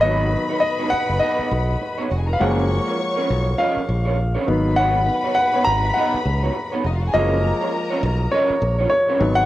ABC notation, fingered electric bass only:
X:1
M:4/4
L:1/16
Q:"Swing 16ths" 1/4=101
K:F#
V:1 name="Fingered electric bass" clef=bass
G,,,3 z4 F,,, z2 B,,,2 z2 E,,,2 | F,,,3 z3 B,,,2 z2 A,,,4 G,,,2- | G,,,3 z3 G,,,2 z2 C,,2 z2 E,,,2 | F,,,3 z3 B,,,2 z2 A,,,2 z2 G,,,2 |]